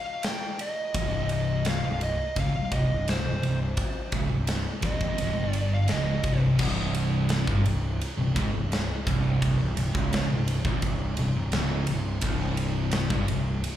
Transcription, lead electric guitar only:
0.00 0.22 F5 loud
0.25 0.61 G5 loud
0.61 1.31 D#5 loud
1.32 1.68 D#5 medium
1.69 2.03 F5 loud
2.03 2.38 D#5 medium
2.40 2.73 F5 loud
2.73 3.09 D#5 medium
3.09 3.58 C5 medium
4.85 5.46 D#5 medium
5.46 5.74 D5 medium
5.75 5.90 F5 loud
5.92 6.40 D#5 medium

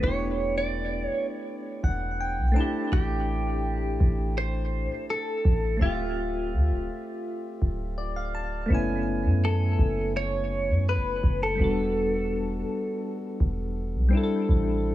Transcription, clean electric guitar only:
0.04 0.57 C#5 medium
0.58 1.05 D5 medium
1.05 1.26 C#5 medium
2.93 4.37 G4 medium
4.38 5.05 C5 loud
5.10 5.78 A4 loud
5.82 7.94 F4 medium
9.45 10.12 A4 medium
10.17 10.89 C#5 loud
10.89 11.43 B4 medium
11.43 14.09 A4 medium

